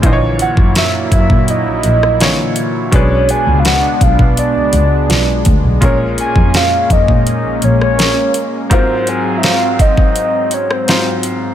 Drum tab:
HH |x-x-x-x-x-x-x-x-|x-x-x-x-x-x-x-x-|x-x-x-x-x-x-x-x-|x-x-x-x-x-x-x-x-|
SD |----o------ro---|----o-------o---|----o------ro---|----o------ro---|
BD |o--o--oo--------|o-----oo------o-|o--o--oo--------|o-----oo--------|